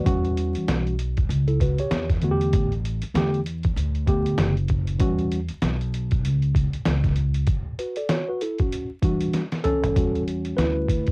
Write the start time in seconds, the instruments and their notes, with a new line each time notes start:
Already playing: tine electric piano B4
0.04 upright bass E2, tine electric piano E3 G3 C#4 F#4, kick, closed hi-hat
0.25 closed hi-hat
0.37 closed hi-hat
0.55 muted upright bass stroke, closed hi-hat
0.68 upright bass B1, snare, closed hi-hat
0.87 closed hi-hat
0.99 closed hi-hat
1.17 kick, closed hi-hat
1.29 upright bass C#2, closed hi-hat
1.48 tine electric piano E4 A4, closed hi-hat
1.60 tine electric piano F#4 B4, kick, closed hi-hat
1.78 tine electric piano G4 C#5, muted upright bass stroke, closed hi-hat
1.91 upright bass E2, snare, closed hi-hat
2.10 kick, snare, closed hi-hat
2.22 tine electric piano D3 A3 B3 F#4, closed hi-hat
2.31 tine electric piano G4
2.41 closed hi-hat
2.53 upright bass A1, kick, closed hi-hat
2.72 closed hi-hat
2.85 closed hi-hat
3.02 muted upright bass stroke, closed hi-hat
3.14 upright bass E2, tine electric piano D3 A3 B3 G4, snare, closed hi-hat
3.34 closed hi-hat
3.46 closed hi-hat
3.63 kick, closed hi-hat
3.76 upright bass D2, closed hi-hat
3.95 closed hi-hat
4.06 tine electric piano D3 A3 B3 G4, kick, closed hi-hat
4.26 muted upright bass stroke, closed hi-hat
4.38 upright bass F#1, snare, closed hi-hat
4.57 closed hi-hat
4.68 kick, closed hi-hat
4.87 closed hi-hat
4.99 upright bass E2, tine electric piano E3 G3 C#4 F#4, kick, closed hi-hat
5.19 closed hi-hat
5.32 closed hi-hat
5.48 muted upright bass stroke, closed hi-hat
5.62 upright bass B1, snare, closed hi-hat
5.81 closed hi-hat
5.94 closed hi-hat
6.11 kick, closed hi-hat
6.25 upright bass C#2, closed hi-hat
6.42 closed hi-hat
6.55 kick, closed hi-hat
6.73 muted upright bass stroke, closed hi-hat
6.85 upright bass C#2, snare, closed hi-hat
7.04 kick, snare, closed hi-hat
7.16 closed hi-hat
7.34 closed hi-hat
7.47 kick, closed hi-hat
7.79 tine electric piano F#4 B4, closed hi-hat
7.96 tine electric piano A4 D5, closed hi-hat
8.09 tine electric piano F#4 C#5, snare, closed hi-hat
8.28 tine electric piano F#4 B4
8.41 tine electric piano E4 A4, closed hi-hat
8.58 tine electric piano C#4 F#4, kick, closed hi-hat
8.72 closed hi-hat
9.02 tine electric piano E3 G3 D4 F#4, kick, closed hi-hat
9.21 closed hi-hat
9.33 snare, closed hi-hat
9.52 snare, closed hi-hat
9.64 tine electric piano C#4 A4, closed hi-hat, mid tom
9.84 closed hi-hat, floor tom
9.96 upright bass E2, tine electric piano G3 C#4 F#4, kick, closed hi-hat
10.15 closed hi-hat
10.28 closed hi-hat
10.45 closed hi-hat
10.57 upright bass D2, tine electric piano E4 B4, snare, closed hi-hat
10.88 kick, closed hi-hat
11.06 kick, closed hi-hat